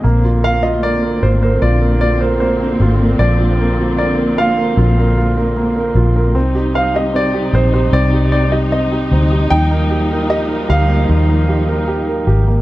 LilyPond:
<<
  \new Staff \with { instrumentName = "Grand piano" } { \time 4/4 \key bes \mixolydian \tempo 4 = 76 r8 f''16 ees''16 d''8 c''16 c''16 d''8 d''16 c''16 c''4 | d''4 d''8 f''2 r8 | r8 f''16 ees''16 d''8 c''16 c''16 d''8 d''16 ees''16 ees''4 | g''4 ees''8 f''2 r8 | }
  \new Staff \with { instrumentName = "Grand piano" } { \time 4/4 \key bes \mixolydian bes16 f'16 bes'16 f'16 bes16 bes'16 f'16 bes'16 f'16 bes'16 f'16 bes'16 bes16 bes'16 f'16 bes'16 | f16 f'16 bes'16 f'16 bes16 bes'16 f'16 bes'16 f'16 bes'16 f'16 bes'16 bes16 bes'16 f'16 bes'16 | c'16 g'16 c'16 g'16 c'16 g'16 c'16 g'16 c'16 g'16 c'16 g'16 c'16 g'16 c'16 g'16 | ees'16 bes16 g'16 bes'16 g'16 bes'16 g'16 bes16 ees16 bes16 g'16 bes'16 g'16 bes'16 g'16 bes16 | }
  \new Staff \with { instrumentName = "String section" } { \clef bass \time 4/4 \key bes \mixolydian << { <bes c'>1~ | <bes c'>1 | <g ees'>1~ | <g ees'>1 | } \\ { d1~ | d1 | c1 | f1 | } >> }
  \new Staff \with { instrumentName = "Fingered electric bass" } { \clef bass \time 4/4 \key bes \mixolydian bes,,4. aes,,8 bes,,4. aes,,8 | bes,,4. aes,,8 bes,,4. bes,,8 | c,4. bes,,8 c,4. d,8 | ees,4. d,8 ees,4. aes,,8 | }
>>